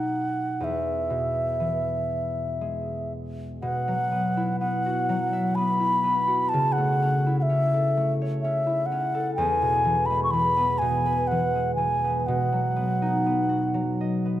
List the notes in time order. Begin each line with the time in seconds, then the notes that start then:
Already playing: B2 F#3 A3 D#4 F#5
0.60 E2 E5
1.10 B2
1.60 E3
2.61 G#3
3.62 B2 F#5
3.88 F#3
4.12 B3
4.37 E4
4.60 B3 F#5
4.86 F#4
5.09 F#3
5.33 E5
5.55 B3 B5
5.80 E4
6.04 B3
6.28 F#4
6.49 A5
6.53 C#3
6.72 F#5
6.78 A3
7.02 C#4
7.27 E4
7.39 E5 F#5
7.50 C#4
7.74 A4
7.97 A3
8.22 C#5
8.42 C#4 E5
8.67 E4
8.86 F#5
8.92 C#4
9.15 A4
9.35 E2 G#5
9.62 B2
9.85 E3
10.06 B5
10.11 G#3
10.23 C#6
10.31 E3 B5
10.57 B3
10.78 B2 G#5
11.06 B4
11.27 E3 F#5
11.55 G#3
11.75 E3 G#5
12.05 B3
12.20 G#5
12.27 B2 F#5
12.52 F#3
12.76 B3
13.02 D#4
13.26 B3
13.49 F#4
13.74 F#3
14.01 D#5
14.26 B3